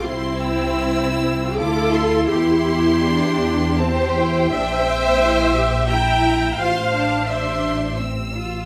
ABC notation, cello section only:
X:1
M:3/4
L:1/8
Q:1/4=84
K:Cmix
V:1 name="Cello section"
C4 E2 | E2 D2 C E | D C E G E2 | F D3 C F |]